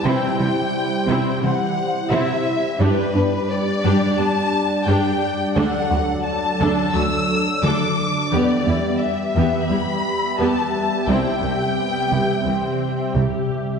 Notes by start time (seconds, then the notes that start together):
Already playing: G3 E4 G4
0.05 C3 C4 E4 C5 G5
0.39 C3 G3 C4
1.08 C3 C4 E4
1.42 C3 E3 G3 C4 F#5
2.11 C3 C4 E4 E5
2.80 G2 G3 D4 G4 B4 D5
3.15 G2 B3 D4
3.51 D5
3.84 G2 G3 D4 G4
4.19 G2 B3 D4 A5
4.87 G2 G3 D4 G4 G5
5.56 D2 D3 F#3 D4 A4 F#5
5.91 D2 A3 F#4
6.25 A5
6.60 D2 D3 D4 A4
6.94 D2 F#3 A3 F#4 E6
7.64 D2 D3 D4 A4 D6
8.32 E2 E3 G3 B3 G4 D5 E5
8.67 E2 G3 B3 E4
9.01 E5
9.36 E2 E3 B3 G4
9.70 E2 G3 E4 B5
10.39 E2 E3 B3 G4 A5
11.08 C2 C3 C4 E4 G5
11.42 C2 G3 C4
11.77 B3
12.12 C2 C3
12.46 C2 E3 C4
13.15 C2 C3 G4